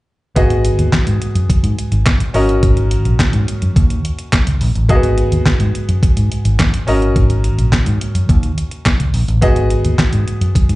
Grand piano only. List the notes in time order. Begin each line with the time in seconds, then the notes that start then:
0.36 B3 F#4 G#4 D#5
2.34 C#4 F#4 A#4 D#5
4.89 A#3 F#4 G#4 D#5
4.95 B3
6.87 C#4 F#4 A#4 D#5
9.41 B3 F#4 G#4 D#5